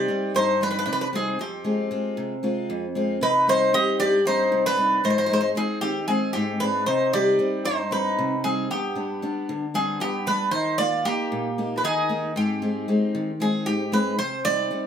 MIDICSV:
0, 0, Header, 1, 4, 480
1, 0, Start_track
1, 0, Tempo, 522193
1, 1283, Time_signature, 7, 3, 24, 8
1, 13666, End_track
2, 0, Start_track
2, 0, Title_t, "Bouzouki"
2, 0, Program_c, 0, 25
2, 0, Note_on_c, 0, 74, 102
2, 293, Note_off_c, 0, 74, 0
2, 329, Note_on_c, 0, 72, 92
2, 550, Note_off_c, 0, 72, 0
2, 580, Note_on_c, 0, 71, 89
2, 636, Note_off_c, 0, 71, 0
2, 649, Note_on_c, 0, 71, 62
2, 706, Note_off_c, 0, 71, 0
2, 723, Note_on_c, 0, 71, 76
2, 777, Note_off_c, 0, 71, 0
2, 787, Note_on_c, 0, 71, 68
2, 840, Note_off_c, 0, 71, 0
2, 851, Note_on_c, 0, 71, 76
2, 910, Note_off_c, 0, 71, 0
2, 930, Note_on_c, 0, 71, 70
2, 984, Note_off_c, 0, 71, 0
2, 1062, Note_on_c, 0, 68, 79
2, 1290, Note_off_c, 0, 68, 0
2, 1294, Note_on_c, 0, 67, 64
2, 1972, Note_off_c, 0, 67, 0
2, 2966, Note_on_c, 0, 71, 85
2, 3207, Note_off_c, 0, 71, 0
2, 3211, Note_on_c, 0, 72, 94
2, 3436, Note_off_c, 0, 72, 0
2, 3439, Note_on_c, 0, 75, 97
2, 3664, Note_off_c, 0, 75, 0
2, 3674, Note_on_c, 0, 74, 102
2, 3901, Note_off_c, 0, 74, 0
2, 3923, Note_on_c, 0, 72, 95
2, 4282, Note_off_c, 0, 72, 0
2, 4285, Note_on_c, 0, 71, 91
2, 4618, Note_off_c, 0, 71, 0
2, 4639, Note_on_c, 0, 72, 85
2, 4679, Note_off_c, 0, 72, 0
2, 4690, Note_on_c, 0, 72, 60
2, 4752, Note_off_c, 0, 72, 0
2, 4763, Note_on_c, 0, 72, 75
2, 4827, Note_off_c, 0, 72, 0
2, 4838, Note_on_c, 0, 72, 65
2, 4892, Note_off_c, 0, 72, 0
2, 4903, Note_on_c, 0, 72, 74
2, 4958, Note_off_c, 0, 72, 0
2, 4969, Note_on_c, 0, 72, 68
2, 5041, Note_off_c, 0, 72, 0
2, 5121, Note_on_c, 0, 68, 80
2, 5339, Note_off_c, 0, 68, 0
2, 5343, Note_on_c, 0, 67, 83
2, 5582, Note_off_c, 0, 67, 0
2, 5586, Note_on_c, 0, 68, 77
2, 5815, Note_off_c, 0, 68, 0
2, 5819, Note_on_c, 0, 67, 80
2, 6067, Note_on_c, 0, 71, 84
2, 6077, Note_off_c, 0, 67, 0
2, 6305, Note_off_c, 0, 71, 0
2, 6309, Note_on_c, 0, 72, 81
2, 6554, Note_off_c, 0, 72, 0
2, 6558, Note_on_c, 0, 74, 96
2, 7032, Note_off_c, 0, 74, 0
2, 7036, Note_on_c, 0, 72, 91
2, 7261, Note_off_c, 0, 72, 0
2, 7282, Note_on_c, 0, 71, 81
2, 7727, Note_off_c, 0, 71, 0
2, 7758, Note_on_c, 0, 68, 79
2, 7982, Note_off_c, 0, 68, 0
2, 8005, Note_on_c, 0, 67, 69
2, 8685, Note_off_c, 0, 67, 0
2, 8962, Note_on_c, 0, 68, 79
2, 9200, Note_off_c, 0, 68, 0
2, 9203, Note_on_c, 0, 67, 84
2, 9441, Note_on_c, 0, 71, 90
2, 9448, Note_off_c, 0, 67, 0
2, 9660, Note_off_c, 0, 71, 0
2, 9664, Note_on_c, 0, 72, 90
2, 9905, Note_off_c, 0, 72, 0
2, 9909, Note_on_c, 0, 74, 99
2, 10160, Note_on_c, 0, 67, 87
2, 10161, Note_off_c, 0, 74, 0
2, 10824, Note_on_c, 0, 71, 66
2, 10835, Note_off_c, 0, 67, 0
2, 10884, Note_off_c, 0, 71, 0
2, 10889, Note_on_c, 0, 68, 88
2, 11331, Note_off_c, 0, 68, 0
2, 11372, Note_on_c, 0, 67, 72
2, 12332, Note_on_c, 0, 68, 78
2, 12529, Note_off_c, 0, 67, 0
2, 12549, Note_off_c, 0, 68, 0
2, 12557, Note_on_c, 0, 67, 85
2, 12781, Note_off_c, 0, 67, 0
2, 12808, Note_on_c, 0, 71, 89
2, 13036, Note_off_c, 0, 71, 0
2, 13040, Note_on_c, 0, 72, 90
2, 13263, Note_off_c, 0, 72, 0
2, 13280, Note_on_c, 0, 74, 103
2, 13666, Note_off_c, 0, 74, 0
2, 13666, End_track
3, 0, Start_track
3, 0, Title_t, "Mandolin"
3, 0, Program_c, 1, 25
3, 0, Note_on_c, 1, 67, 85
3, 297, Note_off_c, 1, 67, 0
3, 339, Note_on_c, 1, 63, 71
3, 555, Note_off_c, 1, 63, 0
3, 573, Note_on_c, 1, 62, 82
3, 633, Note_off_c, 1, 62, 0
3, 651, Note_on_c, 1, 62, 57
3, 706, Note_off_c, 1, 62, 0
3, 726, Note_on_c, 1, 62, 66
3, 779, Note_off_c, 1, 62, 0
3, 791, Note_on_c, 1, 62, 56
3, 846, Note_off_c, 1, 62, 0
3, 857, Note_on_c, 1, 62, 59
3, 913, Note_off_c, 1, 62, 0
3, 927, Note_on_c, 1, 62, 54
3, 983, Note_off_c, 1, 62, 0
3, 1058, Note_on_c, 1, 60, 69
3, 1274, Note_off_c, 1, 60, 0
3, 1296, Note_on_c, 1, 60, 61
3, 1973, Note_off_c, 1, 60, 0
3, 2966, Note_on_c, 1, 63, 78
3, 3187, Note_off_c, 1, 63, 0
3, 3204, Note_on_c, 1, 63, 83
3, 3426, Note_off_c, 1, 63, 0
3, 3442, Note_on_c, 1, 67, 82
3, 3665, Note_off_c, 1, 67, 0
3, 3683, Note_on_c, 1, 67, 79
3, 3905, Note_off_c, 1, 67, 0
3, 3923, Note_on_c, 1, 63, 82
3, 4257, Note_off_c, 1, 63, 0
3, 4291, Note_on_c, 1, 62, 84
3, 4621, Note_off_c, 1, 62, 0
3, 4637, Note_on_c, 1, 63, 75
3, 4703, Note_off_c, 1, 63, 0
3, 4720, Note_on_c, 1, 63, 56
3, 4762, Note_off_c, 1, 63, 0
3, 4773, Note_on_c, 1, 63, 65
3, 4840, Note_off_c, 1, 63, 0
3, 4858, Note_on_c, 1, 63, 57
3, 4912, Note_off_c, 1, 63, 0
3, 4923, Note_on_c, 1, 63, 65
3, 4971, Note_off_c, 1, 63, 0
3, 4982, Note_on_c, 1, 63, 56
3, 5048, Note_off_c, 1, 63, 0
3, 5128, Note_on_c, 1, 60, 71
3, 5343, Note_off_c, 1, 60, 0
3, 5355, Note_on_c, 1, 60, 68
3, 5581, Note_off_c, 1, 60, 0
3, 5602, Note_on_c, 1, 60, 69
3, 5824, Note_off_c, 1, 60, 0
3, 5835, Note_on_c, 1, 60, 64
3, 6061, Note_off_c, 1, 60, 0
3, 6087, Note_on_c, 1, 62, 69
3, 6307, Note_off_c, 1, 62, 0
3, 6322, Note_on_c, 1, 63, 74
3, 6544, Note_off_c, 1, 63, 0
3, 6568, Note_on_c, 1, 67, 81
3, 7011, Note_off_c, 1, 67, 0
3, 7038, Note_on_c, 1, 63, 70
3, 7262, Note_off_c, 1, 63, 0
3, 7285, Note_on_c, 1, 63, 77
3, 7729, Note_off_c, 1, 63, 0
3, 7757, Note_on_c, 1, 60, 64
3, 7981, Note_off_c, 1, 60, 0
3, 8009, Note_on_c, 1, 59, 60
3, 8687, Note_off_c, 1, 59, 0
3, 8972, Note_on_c, 1, 60, 72
3, 9189, Note_off_c, 1, 60, 0
3, 9212, Note_on_c, 1, 59, 69
3, 9429, Note_off_c, 1, 59, 0
3, 9454, Note_on_c, 1, 62, 75
3, 9670, Note_off_c, 1, 62, 0
3, 9697, Note_on_c, 1, 63, 80
3, 9912, Note_off_c, 1, 63, 0
3, 9932, Note_on_c, 1, 65, 82
3, 10149, Note_off_c, 1, 65, 0
3, 10162, Note_on_c, 1, 58, 77
3, 10779, Note_off_c, 1, 58, 0
3, 10809, Note_on_c, 1, 62, 56
3, 10871, Note_off_c, 1, 62, 0
3, 10881, Note_on_c, 1, 63, 69
3, 11327, Note_off_c, 1, 63, 0
3, 11362, Note_on_c, 1, 60, 62
3, 12524, Note_off_c, 1, 60, 0
3, 13666, End_track
4, 0, Start_track
4, 0, Title_t, "Steel-string acoustic guitar"
4, 0, Program_c, 2, 25
4, 76, Note_on_c, 2, 55, 49
4, 81, Note_on_c, 2, 60, 42
4, 89, Note_on_c, 2, 63, 47
4, 317, Note_on_c, 2, 43, 66
4, 463, Note_off_c, 2, 55, 0
4, 466, Note_off_c, 2, 60, 0
4, 467, Note_off_c, 2, 63, 0
4, 558, Note_on_c, 2, 55, 47
4, 565, Note_on_c, 2, 60, 46
4, 570, Note_on_c, 2, 63, 49
4, 786, Note_off_c, 2, 43, 0
4, 794, Note_on_c, 2, 48, 66
4, 944, Note_off_c, 2, 55, 0
4, 948, Note_off_c, 2, 60, 0
4, 949, Note_off_c, 2, 63, 0
4, 1037, Note_on_c, 2, 55, 51
4, 1040, Note_on_c, 2, 60, 48
4, 1048, Note_on_c, 2, 63, 49
4, 1231, Note_off_c, 2, 55, 0
4, 1234, Note_off_c, 2, 60, 0
4, 1236, Note_off_c, 2, 63, 0
4, 1264, Note_off_c, 2, 48, 0
4, 1279, Note_on_c, 2, 41, 63
4, 1512, Note_on_c, 2, 56, 51
4, 1517, Note_on_c, 2, 60, 46
4, 1523, Note_on_c, 2, 65, 45
4, 1743, Note_off_c, 2, 56, 0
4, 1746, Note_off_c, 2, 60, 0
4, 1747, Note_off_c, 2, 41, 0
4, 1751, Note_off_c, 2, 65, 0
4, 1754, Note_on_c, 2, 56, 53
4, 1761, Note_on_c, 2, 60, 43
4, 1762, Note_on_c, 2, 65, 52
4, 1996, Note_on_c, 2, 48, 69
4, 2142, Note_off_c, 2, 56, 0
4, 2144, Note_off_c, 2, 60, 0
4, 2146, Note_off_c, 2, 65, 0
4, 2232, Note_on_c, 2, 56, 48
4, 2238, Note_on_c, 2, 60, 48
4, 2242, Note_on_c, 2, 65, 53
4, 2465, Note_off_c, 2, 48, 0
4, 2479, Note_on_c, 2, 41, 67
4, 2620, Note_off_c, 2, 56, 0
4, 2624, Note_off_c, 2, 60, 0
4, 2626, Note_off_c, 2, 65, 0
4, 2714, Note_on_c, 2, 56, 51
4, 2719, Note_on_c, 2, 60, 49
4, 2726, Note_on_c, 2, 65, 56
4, 2910, Note_off_c, 2, 56, 0
4, 2912, Note_off_c, 2, 60, 0
4, 2917, Note_off_c, 2, 65, 0
4, 2946, Note_off_c, 2, 41, 0
4, 2953, Note_on_c, 2, 48, 68
4, 3192, Note_on_c, 2, 55, 47
4, 3202, Note_on_c, 2, 60, 40
4, 3202, Note_on_c, 2, 63, 53
4, 3417, Note_off_c, 2, 55, 0
4, 3421, Note_off_c, 2, 60, 0
4, 3423, Note_off_c, 2, 48, 0
4, 3425, Note_off_c, 2, 63, 0
4, 3428, Note_on_c, 2, 55, 47
4, 3432, Note_on_c, 2, 60, 45
4, 3436, Note_on_c, 2, 63, 53
4, 3672, Note_on_c, 2, 43, 70
4, 3817, Note_off_c, 2, 55, 0
4, 3820, Note_off_c, 2, 60, 0
4, 3822, Note_off_c, 2, 63, 0
4, 3910, Note_on_c, 2, 55, 54
4, 3921, Note_on_c, 2, 60, 44
4, 3923, Note_on_c, 2, 63, 53
4, 4142, Note_off_c, 2, 43, 0
4, 4153, Note_on_c, 2, 48, 72
4, 4301, Note_off_c, 2, 55, 0
4, 4302, Note_off_c, 2, 60, 0
4, 4306, Note_off_c, 2, 63, 0
4, 4381, Note_on_c, 2, 55, 50
4, 4388, Note_on_c, 2, 60, 46
4, 4390, Note_on_c, 2, 63, 57
4, 4582, Note_off_c, 2, 55, 0
4, 4583, Note_off_c, 2, 60, 0
4, 4587, Note_off_c, 2, 63, 0
4, 4623, Note_off_c, 2, 48, 0
4, 4631, Note_on_c, 2, 44, 68
4, 4873, Note_on_c, 2, 56, 49
4, 4881, Note_on_c, 2, 60, 41
4, 4884, Note_on_c, 2, 63, 53
4, 5092, Note_off_c, 2, 56, 0
4, 5095, Note_off_c, 2, 60, 0
4, 5101, Note_off_c, 2, 44, 0
4, 5101, Note_off_c, 2, 63, 0
4, 5102, Note_on_c, 2, 56, 45
4, 5110, Note_on_c, 2, 60, 41
4, 5112, Note_on_c, 2, 63, 53
4, 5348, Note_on_c, 2, 51, 66
4, 5494, Note_off_c, 2, 56, 0
4, 5496, Note_off_c, 2, 60, 0
4, 5499, Note_off_c, 2, 63, 0
4, 5588, Note_on_c, 2, 56, 50
4, 5593, Note_on_c, 2, 60, 45
4, 5599, Note_on_c, 2, 63, 44
4, 5820, Note_off_c, 2, 51, 0
4, 5839, Note_on_c, 2, 44, 68
4, 5977, Note_off_c, 2, 56, 0
4, 5980, Note_off_c, 2, 60, 0
4, 5981, Note_off_c, 2, 63, 0
4, 6074, Note_on_c, 2, 56, 49
4, 6082, Note_on_c, 2, 60, 44
4, 6084, Note_on_c, 2, 63, 44
4, 6269, Note_off_c, 2, 56, 0
4, 6272, Note_off_c, 2, 63, 0
4, 6274, Note_off_c, 2, 60, 0
4, 6305, Note_off_c, 2, 44, 0
4, 6320, Note_on_c, 2, 48, 65
4, 6553, Note_on_c, 2, 55, 48
4, 6561, Note_on_c, 2, 60, 38
4, 6562, Note_on_c, 2, 63, 56
4, 6780, Note_off_c, 2, 55, 0
4, 6781, Note_off_c, 2, 60, 0
4, 6785, Note_off_c, 2, 48, 0
4, 6788, Note_off_c, 2, 63, 0
4, 6790, Note_on_c, 2, 55, 49
4, 6796, Note_on_c, 2, 60, 40
4, 6799, Note_on_c, 2, 63, 52
4, 7029, Note_on_c, 2, 43, 64
4, 7178, Note_off_c, 2, 55, 0
4, 7179, Note_off_c, 2, 60, 0
4, 7183, Note_off_c, 2, 63, 0
4, 7270, Note_on_c, 2, 55, 47
4, 7277, Note_on_c, 2, 60, 39
4, 7278, Note_on_c, 2, 63, 56
4, 7500, Note_off_c, 2, 43, 0
4, 7524, Note_on_c, 2, 48, 67
4, 7658, Note_off_c, 2, 55, 0
4, 7660, Note_off_c, 2, 60, 0
4, 7663, Note_off_c, 2, 63, 0
4, 7758, Note_on_c, 2, 55, 53
4, 7763, Note_on_c, 2, 60, 40
4, 7765, Note_on_c, 2, 63, 56
4, 7952, Note_off_c, 2, 55, 0
4, 7952, Note_off_c, 2, 60, 0
4, 7955, Note_off_c, 2, 63, 0
4, 7987, Note_off_c, 2, 48, 0
4, 8002, Note_on_c, 2, 43, 65
4, 8230, Note_on_c, 2, 55, 48
4, 8238, Note_on_c, 2, 62, 51
4, 8241, Note_on_c, 2, 59, 41
4, 8466, Note_off_c, 2, 43, 0
4, 8467, Note_off_c, 2, 55, 0
4, 8471, Note_off_c, 2, 59, 0
4, 8477, Note_off_c, 2, 62, 0
4, 8478, Note_on_c, 2, 55, 49
4, 8482, Note_on_c, 2, 59, 45
4, 8488, Note_on_c, 2, 62, 51
4, 8724, Note_on_c, 2, 50, 69
4, 8862, Note_off_c, 2, 55, 0
4, 8865, Note_off_c, 2, 59, 0
4, 8868, Note_off_c, 2, 62, 0
4, 8955, Note_on_c, 2, 55, 49
4, 8961, Note_on_c, 2, 59, 45
4, 8966, Note_on_c, 2, 62, 55
4, 9187, Note_off_c, 2, 50, 0
4, 9194, Note_on_c, 2, 43, 69
4, 9341, Note_off_c, 2, 55, 0
4, 9344, Note_off_c, 2, 59, 0
4, 9347, Note_off_c, 2, 62, 0
4, 9435, Note_on_c, 2, 55, 54
4, 9443, Note_on_c, 2, 59, 39
4, 9443, Note_on_c, 2, 62, 55
4, 9630, Note_off_c, 2, 55, 0
4, 9632, Note_off_c, 2, 59, 0
4, 9634, Note_off_c, 2, 62, 0
4, 9662, Note_off_c, 2, 43, 0
4, 9671, Note_on_c, 2, 51, 68
4, 9919, Note_on_c, 2, 58, 48
4, 9923, Note_on_c, 2, 63, 43
4, 9932, Note_on_c, 2, 67, 42
4, 10141, Note_off_c, 2, 51, 0
4, 10149, Note_off_c, 2, 58, 0
4, 10153, Note_off_c, 2, 63, 0
4, 10153, Note_off_c, 2, 67, 0
4, 10159, Note_on_c, 2, 58, 48
4, 10164, Note_on_c, 2, 63, 44
4, 10165, Note_on_c, 2, 67, 46
4, 10403, Note_on_c, 2, 46, 66
4, 10544, Note_off_c, 2, 58, 0
4, 10546, Note_off_c, 2, 63, 0
4, 10546, Note_off_c, 2, 67, 0
4, 10646, Note_on_c, 2, 58, 48
4, 10651, Note_on_c, 2, 63, 45
4, 10654, Note_on_c, 2, 67, 47
4, 10867, Note_off_c, 2, 46, 0
4, 10886, Note_on_c, 2, 51, 70
4, 11027, Note_off_c, 2, 58, 0
4, 11030, Note_off_c, 2, 63, 0
4, 11030, Note_off_c, 2, 67, 0
4, 11116, Note_on_c, 2, 58, 50
4, 11124, Note_on_c, 2, 63, 42
4, 11128, Note_on_c, 2, 67, 53
4, 11310, Note_off_c, 2, 58, 0
4, 11312, Note_off_c, 2, 63, 0
4, 11316, Note_off_c, 2, 67, 0
4, 11348, Note_off_c, 2, 51, 0
4, 11360, Note_on_c, 2, 44, 68
4, 11599, Note_on_c, 2, 56, 47
4, 11603, Note_on_c, 2, 60, 46
4, 11611, Note_on_c, 2, 63, 44
4, 11825, Note_off_c, 2, 44, 0
4, 11828, Note_off_c, 2, 56, 0
4, 11833, Note_off_c, 2, 60, 0
4, 11837, Note_off_c, 2, 63, 0
4, 11839, Note_on_c, 2, 56, 51
4, 11844, Note_on_c, 2, 60, 45
4, 11848, Note_on_c, 2, 63, 54
4, 12084, Note_on_c, 2, 51, 67
4, 12223, Note_off_c, 2, 56, 0
4, 12226, Note_off_c, 2, 60, 0
4, 12228, Note_off_c, 2, 63, 0
4, 12318, Note_on_c, 2, 56, 49
4, 12325, Note_on_c, 2, 60, 44
4, 12330, Note_on_c, 2, 63, 57
4, 12547, Note_off_c, 2, 51, 0
4, 12564, Note_on_c, 2, 44, 65
4, 12702, Note_off_c, 2, 56, 0
4, 12707, Note_off_c, 2, 60, 0
4, 12710, Note_off_c, 2, 63, 0
4, 12795, Note_on_c, 2, 56, 53
4, 12802, Note_on_c, 2, 60, 45
4, 12806, Note_on_c, 2, 63, 52
4, 12991, Note_off_c, 2, 56, 0
4, 12993, Note_off_c, 2, 60, 0
4, 12993, Note_off_c, 2, 63, 0
4, 13027, Note_off_c, 2, 44, 0
4, 13044, Note_on_c, 2, 48, 69
4, 13282, Note_on_c, 2, 55, 48
4, 13288, Note_on_c, 2, 60, 40
4, 13288, Note_on_c, 2, 63, 52
4, 13508, Note_off_c, 2, 48, 0
4, 13508, Note_off_c, 2, 55, 0
4, 13514, Note_off_c, 2, 60, 0
4, 13515, Note_off_c, 2, 63, 0
4, 13519, Note_on_c, 2, 55, 49
4, 13524, Note_on_c, 2, 60, 42
4, 13530, Note_on_c, 2, 63, 41
4, 13666, Note_off_c, 2, 55, 0
4, 13666, Note_off_c, 2, 60, 0
4, 13666, Note_off_c, 2, 63, 0
4, 13666, End_track
0, 0, End_of_file